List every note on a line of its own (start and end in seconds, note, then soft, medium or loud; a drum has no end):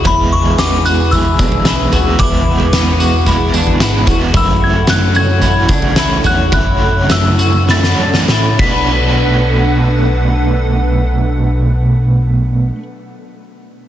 0.00 8.55 E4 medium
0.00 4.30 G#4 medium
0.04 0.57 E2 loud
0.04 1.11 E3 medium
0.04 1.12 G#3 medium
0.04 0.59 E4 loud
0.04 4.31 B4 medium
0.04 2.19 G#5 medium
0.04 0.34 B5 loud
0.04 kick loud
0.04 floor tom loud
0.04 tambourine medium
0.08 1.14 B3 medium
0.08 1.15 E4 medium
0.32 0.60 C#6 medium
0.46 floor tom medium
0.58 1.36 E2 medium
0.58 0.86 B3 medium
0.58 0.87 D6 loud
0.58 snare loud
0.58 tambourine medium
0.85 1.12 F#4 medium
0.85 1.13 F#6 medium
0.85 tambourine medium
1.11 2.18 E3 medium
1.11 1.94 G#3 medium
1.11 1.93 B3 medium
1.11 1.40 E4 medium
1.11 2.15 E6 loud
1.11 floor tom medium
1.11 tambourine medium
1.16 1.91 E4 medium
1.39 1.90 B1 medium
1.39 1.66 D4 medium
1.39 kick loud
1.39 tambourine medium
1.52 floor tom medium
1.65 1.92 E4 medium
1.65 snare loud
1.65 tambourine loud
1.92 2.19 D2 medium
1.92 2.21 B3 medium
1.92 2.19 E4 medium
1.92 2.19 F#4 medium
1.92 floor tom medium
1.92 tambourine medium
1.96 2.20 G#3 medium
2.18 2.71 E2 loud
2.18 3.26 E3 medium
2.18 3.27 G#3 medium
2.18 2.74 E4 medium
2.18 8.55 F#5 medium
2.18 3.23 D6 medium
2.18 kick loud
2.18 floor tom loud
2.18 tambourine medium
2.23 3.28 B3 medium
2.23 3.30 E4 medium
2.60 floor tom medium
2.73 3.50 E2 loud
2.73 3.00 B3 medium
2.73 snare loud
2.73 tambourine medium
3.00 3.26 F#4 medium
3.00 tambourine medium
3.26 4.33 E3 medium
3.26 4.08 G#3 medium
3.26 4.07 B3 medium
3.26 3.54 E4 medium
3.26 floor tom medium
3.26 tambourine medium
3.30 4.05 E4 medium
3.54 3.79 E2 loud
3.54 3.81 D4 medium
3.54 tambourine medium
3.67 floor tom medium
3.80 4.06 G#2 loud
3.80 4.07 E4 medium
3.80 snare loud
3.80 tambourine loud
4.06 4.33 E2 medium
4.06 4.35 B3 medium
4.06 4.34 E4 medium
4.06 4.34 F#4 medium
4.06 kick medium
4.06 floor tom medium
4.06 tambourine medium
4.10 4.34 G#3 medium
4.32 5.41 F#2 medium
4.32 4.85 F#2 loud
4.32 5.42 C#3 medium
4.32 5.40 E3 medium
4.32 4.88 E4 loud
4.32 8.55 A4 medium
4.32 8.56 C#5 medium
4.32 kick loud
4.32 floor tom loud
4.32 tambourine medium
4.36 5.42 A3 medium
4.36 5.43 C#4 medium
4.36 5.44 F#4 medium
4.36 4.63 E6 medium
4.64 4.90 G#6 medium
4.87 5.65 F#2 loud
4.87 5.15 A3 medium
4.87 5.17 F#6 medium
4.87 snare loud
4.87 tambourine medium
5.15 5.42 F#4 medium
5.15 6.29 G#6 loud
5.15 tambourine medium
5.41 6.24 E3 medium
5.41 6.26 A3 medium
5.41 6.24 C#4 medium
5.41 5.70 E4 medium
5.41 6.24 F#4 medium
5.41 floor tom medium
5.41 tambourine medium
5.69 6.22 C#2 loud
5.69 5.97 D4 medium
5.69 kick loud
5.69 tambourine medium
5.82 floor tom medium
5.96 6.25 E4 medium
5.96 snare loud
5.96 tambourine medium
6.24 6.54 E2 medium
6.24 6.53 E3 soft
6.24 6.54 A3 medium
6.24 6.53 C#4 medium
6.24 6.53 F#4 medium
6.24 6.52 F#4 medium
6.24 6.52 F#6 loud
6.24 floor tom medium
6.24 tambourine medium
6.51 7.67 F#2 medium
6.51 7.07 F#2 loud
6.51 7.68 C#3 medium
6.51 7.66 E3 medium
6.51 7.68 A3 medium
6.51 7.10 E4 loud
6.51 7.12 F#6 loud
6.51 kick loud
6.51 floor tom loud
6.51 tambourine medium
6.56 7.69 C#4 medium
6.56 7.70 F#4 medium
7.09 7.94 F#2 loud
7.09 7.39 A3 medium
7.09 7.71 E6 medium
7.09 snare loud
7.09 tambourine medium
7.38 7.68 F#4 medium
7.38 tambourine medium
7.67 8.59 E3 medium
7.67 8.61 A3 medium
7.67 8.60 C#4 medium
7.67 7.98 E4 medium
7.67 8.66 F#4 medium
7.67 8.56 A6 loud
7.67 snare medium
7.83 snare medium
7.98 8.27 F#2 loud
7.98 8.29 D4 medium
8.14 snare medium
8.28 8.58 A2 loud
8.28 8.60 E4 medium
8.28 snare loud
8.55 12.71 B2 medium
8.55 12.75 F#3 medium
8.55 12.71 B3 medium
8.55 kick loud
8.55 crash medium
8.59 12.71 B1 medium
8.59 12.78 A3 medium
8.59 12.71 D4 medium
8.59 12.75 D4 medium
8.59 12.72 A4 medium
8.59 12.71 B4 medium
8.59 12.71 F#5 medium
8.59 12.72 B6 medium
8.64 12.80 D4 medium
8.64 12.82 F#4 loud
8.64 8.71 F#4 medium
8.71 12.83 B4 medium